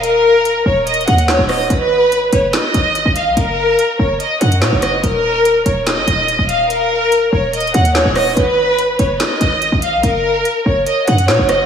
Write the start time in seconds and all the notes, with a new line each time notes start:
Already playing: D#1
0.03 A#4, closed hi-hat
0.45 closed hi-hat
0.66 D#1 C#5
0.87 D#5, closed hi-hat
0.94 closed hi-hat
1.01 closed hi-hat
1.07 D#2 F#5, closed hi-hat
1.18 closed hi-hat
1.28 C#5, snare, clap
1.39 D#1
1.49 D#5, cross-stick, open hi-hat
1.70 G#1 B4, closed hi-hat
2.12 closed hi-hat
2.33 F#1 C#5, closed hi-hat
2.53 D#5, snare, clap, closed hi-hat
2.74 G#1, closed hi-hat
2.95 closed hi-hat
3.06 G#1
3.16 F5, closed hi-hat
3.26 B1
3.37 F#1 A#4, closed hi-hat
3.79 closed hi-hat
3.99 F#1 C#5
4.20 D#5, closed hi-hat
4.41 F#2 F#5, closed hi-hat
4.52 closed hi-hat
4.62 A#2 C#5, snare, clap
4.72 F#1
4.82 D#5, cross-stick, closed hi-hat
5.03 D#1 A#4, closed hi-hat
5.45 closed hi-hat
5.66 D#1 C#5, closed hi-hat
5.87 D#5, snare, clap, closed hi-hat
5.97 F#1
6.08 D#1, closed hi-hat
6.28 closed hi-hat
6.39 D#1
6.49 F5, closed hi-hat
6.70 A#4, closed hi-hat
7.12 closed hi-hat
7.33 D#1 C#5
7.53 D#5, closed hi-hat
7.60 closed hi-hat
7.67 closed hi-hat
7.74 D#2 F#5, closed hi-hat
7.85 closed hi-hat
7.95 C#5, snare, clap
8.05 D#1
8.16 D#5, cross-stick, open hi-hat
8.37 G#1 B4, closed hi-hat
8.79 closed hi-hat
8.99 F#1 C#5, closed hi-hat
9.20 D#5, snare, clap, closed hi-hat
9.41 G#1, closed hi-hat
9.62 closed hi-hat
9.72 G#1
9.82 F5, closed hi-hat
9.93 B1
10.03 F#1 A#4, closed hi-hat
10.45 closed hi-hat
10.66 F#1 C#5
10.87 D#5, closed hi-hat
11.08 F#2 F#5, closed hi-hat
11.18 closed hi-hat
11.28 A#2 C#5, snare, clap
11.39 F#1
11.49 D#5, cross-stick, closed hi-hat